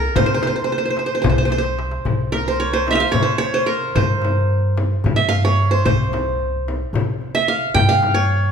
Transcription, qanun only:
Already playing: A#4
0.16 C5
0.26 C5
0.34 C5
0.43 C5
0.47 C5
0.56 C5
0.64 C5
0.72 C5
0.78 C5
0.85 C5
0.90 C5
0.99 C5
1.06 C5
1.15 C5
1.22 C5
1.30 C5
1.38 C5
1.45 C5
1.52 C5
1.58 C5
2.32 A#4
2.48 C5
2.60 C#5
2.73 C5
2.91 E5 F5
2.95 E5
3.00 F5
3.12 C#5
3.23 C5
3.38 C#5
3.54 C5
3.66 A#4
3.96 C5
5.16 E5
5.29 F5
5.45 C#5
5.71 C5
5.85 C5
7.35 E5
7.48 F5
7.75 G5
7.89 F5
8.14 C#5

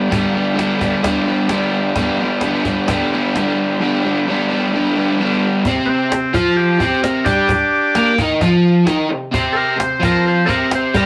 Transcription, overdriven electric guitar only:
Already playing: G3 B3 D4
0.10 G2 D3 G3 B3 D4
0.34 G3 B3 D4
0.54 D3 G3 B3 D4
0.79 G3 B3 D4
1.03 G2 D3 G3 B3 D4
1.24 B3 D4
1.28 G3
1.48 D3 G3 B3 D4
1.95 G2 D3 G3 B3
1.99 D4
2.19 B3 D4
2.23 G3
2.43 D3 G3 B3 D4
2.65 G3 B3 D4
2.87 G2 D3 G3 B3 D4
3.12 G3 B3 D4
3.35 D3 G3 B3 D4
3.80 G2 D3 G3 B3 D4
4.01 G3 B3 D4
4.26 D3 G3 B3 D4
4.48 B3 D4
4.52 G3
4.73 G2 D3 G3 B3 D4
4.95 G3 B3 D4
5.18 D3 G3 B3 D4
5.66 C3 C4
6.11 C3
6.34 F3 F4
6.79 C3 C4
7.26 G3 G4
7.50 muted overdriven electric guitar stroke
7.95 A#3 A#4
8.18 D#3 D#4
8.41 F3 F4
8.86 D#3 D#4
9.11 C3
9.32 C3 C4
9.78 C3
10.00 F3 F4
10.47 C3 C4
10.94 G3 G4

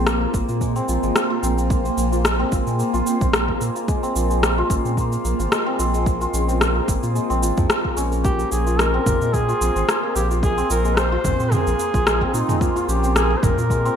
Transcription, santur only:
Already playing: C4 F4
0.06 A#3
0.21 A#3
0.34 A#3
0.49 F4
0.61 G#3
0.76 C4
0.88 F4
1.03 G#3
1.16 A#3
1.30 F4
1.43 C4
1.58 C4
1.70 A#3
1.85 A#3
1.97 A#3
2.12 F4
2.25 G#3
2.40 C4
2.52 F4
2.67 G#3
2.79 A#3
2.94 F4
3.06 C4
3.21 C4
3.33 A#3
3.48 A#3
3.61 A#3
3.76 F4
3.88 G#3
4.03 C4
4.16 F4
4.30 G#3
4.43 A#3
4.58 F4
4.70 C#4
4.85 C4
4.98 A#3
5.12 A#3
5.25 A#3
5.39 F4
5.52 G#3
5.66 C4
5.79 F4
5.94 G#3
6.06 A#3
6.21 F4
6.33 C#4
6.48 C4
6.61 A#3
6.75 A#3
6.88 A#3
7.03 F4
7.15 G#3
7.30 C4
7.42 F4
7.57 F3
7.70 G#3
7.84 A#3
7.97 C#4
8.12 A#4
8.24 A#3
8.39 A#3
8.52 A#3
8.66 F4
8.79 G#3
8.94 C4
9.06 F4
9.21 G#3
9.34 A#3
9.48 F4
9.61 C4
9.76 C4
9.89 A#3
10.03 A#3
10.16 A#3
10.31 F4
10.43 G#3
10.58 C4
10.70 F4
10.85 G#3
10.97 A#3
11.12 F4
11.25 C4
11.40 C4
11.53 A#3
11.67 A#3
11.80 A#3
11.94 F4
12.07 G#3
12.22 C4
12.34 F4
12.49 G#3
12.61 A#3
12.76 F4
12.88 C#4
13.03 C4
13.15 A#3
13.30 A#3
13.43 A#3
13.58 F4
13.71 G#3
13.85 C4

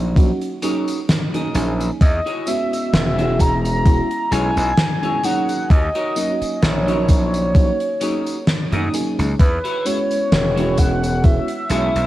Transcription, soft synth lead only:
2.01 D#5
2.48 E5
3.40 A#5
4.32 G#5
5.25 F#5
5.71 D#5
6.57 D#5
6.63 C#5
9.39 B4
9.86 C#5
10.78 F#5
11.25 E5

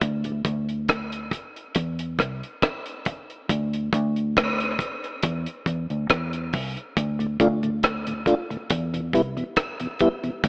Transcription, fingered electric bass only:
0.02 D2
0.45 D2
1.76 E2
2.19 C2
3.50 D2
3.93 D2
5.24 E2
5.67 E2
5.90 D2
6.10 E2
6.54 C2
6.97 D2
7.40 D2
8.71 E2
9.14 C2
10.44 D2

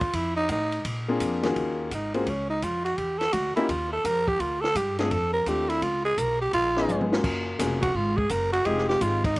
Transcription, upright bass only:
Already playing: D#2
0.13 F2
0.49 A2
0.85 A#2
1.20 F2
1.56 D#2
1.91 G#1
2.27 C#2
2.62 F2
2.98 E2
3.33 D2
3.56 muted upright bass stroke
3.69 D#2
4.04 F2
4.40 D2
4.75 G2
5.11 F2
5.46 D#2
5.82 C#2
6.17 B1
6.53 A#1
6.88 G#1
7.24 F#1
7.59 F1
7.95 G#1
8.30 F#1
8.65 F1
9.01 G#1
9.36 A#1

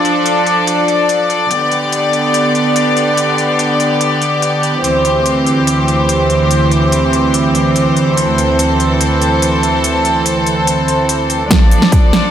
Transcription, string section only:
Already playing: F3 D4 A4 D5
1.51 D3 B3 G4
4.84 D2 E3 C4 C5
8.17 A4
11.51 F3 D4 A4 D5

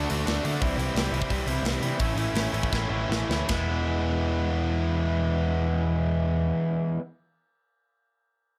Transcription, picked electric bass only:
0.11 D2
0.27 D2
0.44 D3
0.62 C2
0.78 C2
0.95 C2
1.12 C2
1.31 C2
1.46 C2
1.63 C2
1.80 C3
2.00 A1
2.15 A1
2.34 A1
2.54 A1
2.73 A1
2.90 A1
3.09 A1
3.29 D2
3.50 E1

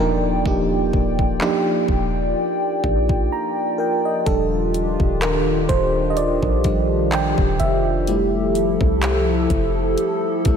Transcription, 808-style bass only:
0.00 D#1
0.46 D#1
0.94 D#1
1.89 D#1
2.84 A#1
4.27 D#1
5.00 D#1
5.70 D#1
6.43 A#1
7.38 D#1
7.60 F1
8.81 C2
9.50 F1
10.46 C2

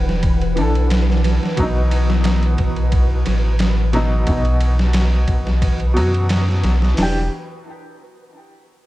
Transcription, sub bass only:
Already playing: E1
0.58 B1
1.58 B1
2.59 B1
3.28 A1
4.27 B1
5.28 B1
5.97 F#2
6.65 B1
6.98 E1

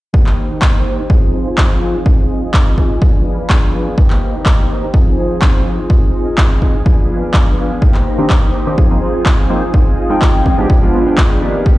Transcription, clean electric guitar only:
0.13 A#3 D#4 G4
0.50 D#4 G4
0.62 A#3 D#4
0.85 A#3 D#4 G4
0.98 D#4 G4
1.09 F3 C4 D#4 G#4
1.33 F3 C4 D#4 G#4
1.45 C4 D#4 G#4
1.57 F3 G#4
1.81 F3 C4 D#4 G#4
1.94 C4 D#4 G#4
2.05 C4 D#4 G#4
2.42 D#4 G#4
2.54 C4 D#4 G#4
2.77 C4 D#4 G#4
2.90 D#4 G#4
3.02 F3 B3 D4 G#4
3.26 F3 B3 D4 G#4
3.38 B3 D4 G#4
3.50 F3 B3 D4 G#4
3.73 F3 B3 D4 G#4
3.86 B3 D4 G#4
3.97 A#3 D#4 G4
4.34 D#4 G4
4.45 A#3 D#4 G4
4.70 A#3 D#4 G4
4.82 D#4 G4
4.93 F3 C4 D#4 G#4
5.17 F3 C4 D#4 G#4
5.41 F3 C4 D#4
5.65 F3 C4 D#4 G#4
5.77 C4 D#4 G#4
5.89 C4
6.25 D#4 G#4
6.37 C4 D#4 G#4
6.61 C4 D#4 G#4
6.73 D#4 G#4
6.85 F3 B3 D4 G#4
7.09 F3 B3 D4 G#4
7.22 B3 D4 G#4
7.33 F3 B3 D4 G#4
7.57 F3 B3 D4 G#4
7.70 B3 D4 G#4
7.81 A#3 D#4 G4
8.18 D#4 G4
8.29 A#3 D#4 G4
8.53 A#3 D#4 G4
8.65 D#4 G4
8.77 F3 C4 D#4 G#4
9.01 F3 C4 D#4 G#4
9.14 C4 D#4 G#4
9.25 F3 C4 D#4 G#4
9.49 F3 C4 D#4 G#4
9.62 C4 D#4 G#4
9.73 C4 D#4 G#4
10.09 D#4 G#4
10.21 C4 D#4 G#4
10.45 C4 D#4 G#4
10.57 D#4 G#4
10.69 F3 B3 D4 G#4
10.93 F3 B3 D4 G#4
11.06 B3 D4 G#4
11.17 F3 B3 D4 G#4
11.41 F3 B3 D4 G#4
11.54 B3 D4 G#4
11.65 A#3 D#4 G4

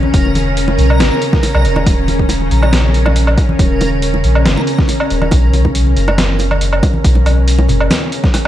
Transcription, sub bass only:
0.14 E1
0.79 B1
1.00 G#1
1.55 B1
1.65 E1
1.86 D#1
2.51 A#1
3.59 D#1
4.24 A#1
4.46 F#1
5.10 D#1
5.32 B1
5.97 F#1
7.05 B1
7.69 F#1

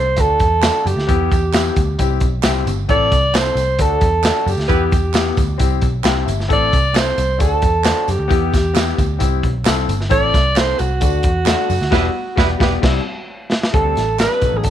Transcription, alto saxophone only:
Already playing: C5
0.20 A4
0.88 G4
2.90 D5
3.36 C5
3.81 A4
4.50 G4
6.53 D5
6.97 C5
7.41 A4
8.10 G4
10.12 D5
10.57 C5
10.79 F#4
13.74 A4
14.20 B4
14.57 G#4
14.65 A4

